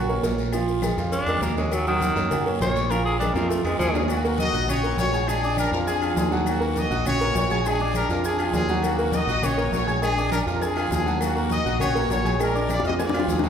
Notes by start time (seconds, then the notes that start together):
Already playing: A#1 F#4
0.09 A#3 A#4 C#5, maracas
0.23 A#1 A#3 A#4 C#5, cowbell, high conga, low timbale, low agogo, short guiro, maracas
0.38 low agogo, short guiro, maracas
0.52 F3 F4 F5, cowbell, low agogo, long guiro, claves, maracas
0.67 high conga, maracas
0.82 G#3 G#4 A#4, cowbell, high conga, low timbale, low agogo, short guiro, claves, maracas
0.97 F2 F3 F4 F5, short guiro, maracas
1.12 D4, cowbell, high conga, low agogo, long guiro, maracas
1.26 F2 G#3 G#4 A#4, cowbell, high conga, low agogo, claves, maracas
1.41 D#2 A#3, cowbell, high conga, low timbale, short guiro, maracas
1.57 G#3 A#3 A#4 C#5, high conga, short guiro, maracas
1.71 F#3, cowbell, high conga, low agogo, long guiro, claves, maracas
1.87 D#3 F#3 F#4 F#5, maracas
2.01 cowbell, high conga, low timbale, low agogo, short guiro, maracas
2.16 F#2 A#3 A#4 C#5, high conga, low agogo, short guiro, maracas
2.31 F#3 F#4 F#5, cowbell, high conga, low conga, low agogo, long guiro, claves, maracas
2.46 A#3 A#4 C#5, high conga, maracas
2.60 A#1 A#3 A#4 C#5, cowbell, high conga, low timbale, low agogo, short guiro, maracas
2.76 low agogo, short guiro, maracas
2.90 F3 F4 A#4 F5, cowbell, high conga, low agogo, long guiro, claves, maracas
3.05 G#4, maracas
3.19 G#3 D4 G#4 A#4, cowbell, high conga, low timbale, low agogo, short guiro, claves, maracas
3.34 F2 F3 A#3 F4 F5, high bongo, short guiro, maracas
3.49 A3, cowbell, low agogo, long guiro, maracas
3.64 F2 G#3 G#4 A#4, cowbell, high timbale, low agogo, claves, maracas
3.79 D#2 F3 D4 G#4, cowbell, high conga, low timbale, short guiro, maracas
3.94 A#3 A#4 C#5, low bongo, high conga, low timbale, short guiro, maracas
4.08 A#3 F#4, high conga, low agogo, long guiro, claves, maracas
4.24 A#3 A#4 A#5, high conga, maracas
4.38 F#4 D#5, high conga, low timbale, low agogo, short guiro, maracas
4.53 A#1 F#4 F#5 F#6, low agogo, short guiro, maracas
4.68 C#4 F#4 C#5 C#6, high conga, low conga, low agogo, long guiro, claves, maracas
4.83 A#3 A#4 A#5, maracas
4.98 A#1 F#4 C#5, high conga, low timbale, low agogo, short guiro, maracas
5.13 G#4 G#5 G#6, low agogo, short guiro, maracas
5.27 G#3 D4 G#4 G#5, high conga, low agogo, long guiro, claves, maracas
5.42 D4 D5 D6, high conga, maracas
5.57 D4 A#4, high conga, low timbale, low agogo, short guiro, claves, maracas
5.71 F2 D4 F4 A#4 F5 F6, short guiro, maracas
5.87 D4 G#4 G#5 G#6, high conga, low agogo, long guiro, maracas
6.02 F4 F5 F6, high conga, low agogo, claves, maracas
6.16 D#2 D4 G#4, high conga, low timbale, short guiro, maracas
6.31 F#3 F#4 F#5, high conga, short guiro, maracas
6.46 A#3 F#4, high conga, low agogo, long guiro, claves, maracas
6.60 A#3 A#4 A#5, high conga, maracas
6.76 F#4 D#5, high conga, low timbale, low agogo, short guiro, maracas
6.90 A#1 F#4 F#5 F#6, high conga, low agogo, short guiro, maracas
7.05 C#4 F#4 C#5 C#6, high conga, low conga, low agogo, long guiro, claves, maracas
7.20 A#3 A#4 A#5, high conga, maracas
7.35 A#1 F#4 C#5, high conga, low timbale, low agogo, short guiro, maracas
7.50 G#4 G#5 G#6, high conga, low agogo, short guiro, maracas
7.65 G#3 D4 G#4 G#5, low agogo, long guiro, claves, maracas
7.80 D4 D5 D6, high conga, maracas
7.94 D4 A#4, high conga, low timbale, low agogo, short guiro, claves, maracas
8.09 F2 D4 F4 A#4 F5 F6, short guiro, maracas
8.24 D4 G#4 G#5 G#6, high conga, low agogo, long guiro, maracas
8.39 F4 F5 F6, high conga, low agogo, claves, maracas
8.54 D#2 D4 G#4, high conga, low timbale, short guiro, maracas
8.69 F#3 F#4 F#5, short guiro, maracas
8.83 A#3 F#4, cowbell, high conga, low agogo, long guiro, claves, maracas
8.98 A#3 A#4 A#5, high conga, maracas
9.12 F#4 D#5, cowbell, high conga, low timbale, low agogo, short guiro, maracas
9.27 A#1 F#4 F#5 F#6, low agogo, short guiro, maracas
9.42 C#4 F#4 C#5 C#6, cowbell, high conga, low conga, low agogo, long guiro, claves, maracas
9.57 A#3 A#4 A#5, high conga, maracas
9.72 A#1 F#4 C#5, cowbell, high conga, low timbale, low agogo, short guiro, maracas
9.87 G#4 G#5 G#6, high conga, low agogo, short guiro, maracas
10.02 G#3 D4 G#4 G#5, cowbell, high conga, low agogo, long guiro, claves, maracas
10.17 D4 D5 D6, maracas
10.32 D4 A#4, cowbell, high conga, low timbale, low agogo, short guiro, claves, maracas
10.46 F2 F4 F5 F6, short guiro, maracas
10.54 A#4
10.61 D4 G#4 G#5 G#6, cowbell, high conga, low agogo, long guiro, maracas
10.76 F4 F5 F6, cowbell, high conga, low agogo, claves, maracas
10.91 D#2 D4 G#4, cowbell, high conga, low timbale, short guiro, maracas
11.06 F#3 F#4 F#5, short guiro, maracas
11.20 A#3 F#4, cowbell, high conga, low agogo, long guiro, claves, maracas
11.35 A#3 A#4 A#5, high conga, maracas
11.50 F#4 D#5, cowbell, high conga, low timbale, low agogo, short guiro, maracas
11.65 A#1 F#4 F#5 F#6, low agogo, short guiro, maracas
11.79 C#4 F#4 C#5 C#6, cowbell, high conga, low conga, low agogo, long guiro, claves, maracas
11.94 A#3 A#4 A#5, high conga, low conga, maracas
12.09 A#1 F#4 C#5, cowbell, high conga, low timbale, low agogo, short guiro, maracas
12.24 G#4 G#5 G#6, high conga, low agogo, short guiro, maracas
12.39 G#3 D4 G#4 A#4 G#5, cowbell, low agogo, long guiro, claves, maracas
12.55 D4 D5 D6, maracas
12.69 F4 D5, cowbell, high bongo, high conga, low timbale, low agogo, short guiro, claves, maracas
12.80 F2 F4, high bongo
12.84 F#4 D#5 F5 F6, short guiro, maracas
12.89 high bongo
12.99 F4 G#4 G#5 G#6, cowbell, high bongo, high conga, high timbale, low agogo, long guiro, maracas
13.03 D5
13.09 F4, low bongo
13.13 F5 F6, cowbell, high conga, low timbale, low agogo, claves, maracas
13.19 low bongo
13.28 D#2 D4 G#4, cowbell, high conga, low timbale, short guiro, maracas
13.39 F#3, low bongo
13.43 F#4 F#5, low timbale, short guiro, maracas